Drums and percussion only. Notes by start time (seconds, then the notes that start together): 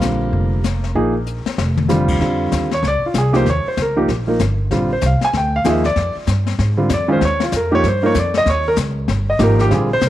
0.01 snare, hi-hat pedal
0.33 brush sweep, kick
0.64 snare, hi-hat pedal
0.84 snare
0.95 brush sweep, kick
1.26 hi-hat pedal
1.46 snare
1.58 snare
1.77 mid tom
1.89 snare, hi-hat pedal
2.08 kick, crash
2.21 brush sweep, snare
2.52 kick, snare, hi-hat pedal
2.71 snare
2.83 brush sweep, kick, snare
3.14 kick, snare, hi-hat pedal
3.34 snare
3.46 brush sweep, kick, snare
3.77 kick, snare, hi-hat pedal
4.08 brush sweep, kick, snare
4.39 kick, snare, hi-hat pedal
4.71 brush sweep, kick, snare
5.01 kick, snare, hi-hat pedal
5.21 snare
5.33 brush sweep, kick, snare
5.64 kick, snare, hi-hat pedal
5.84 snare
5.96 brush sweep, kick, snare
6.27 kick, snare, hi-hat pedal
6.46 snare
6.59 brush sweep, kick, snare
6.89 kick, snare, hi-hat pedal
7.21 brush sweep, kick, snare
7.40 snare
7.52 kick, snare, hi-hat pedal
7.84 brush sweep, kick, snare
8.14 kick, snare, hi-hat pedal
8.34 snare
8.46 brush sweep, kick, snare
8.76 kick, snare, hi-hat pedal
9.08 brush sweep, kick, snare
9.39 kick, snare, hi-hat pedal
9.59 snare
9.71 brush sweep, kick, snare
10.01 kick, snare, hi-hat pedal